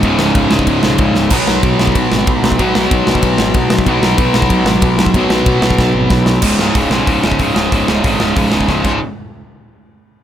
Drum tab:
CC |----------------|x---------------|----------------|----------------|
RD |x---x---x---x---|----x---x---x---|x---x---x---x---|x---x---x---x---|
HH |----------------|----------------|----------------|----------------|
SD |--o---o---o---o-|--o---o---o---o-|--o---o---o---o-|--o---o---o---o-|
BD |o---o--oo---o---|o---o--oo---o--o|o---o--oo---o--o|o---o--oo---o--o|

CC |----------------|x---------------|--------------x-|----------------|
RD |x---x-----------|----------------|----------------|----------------|
HH |----------------|----o---o---o---|o---o---o-------|----------------|
SD |--o---o-o---o-o-|--o---o---o---o-|--o---o---o-o---|----------------|
BD |o---o--oo---o---|o---o---o--oo---|o---o---o--oo-o-|----------------|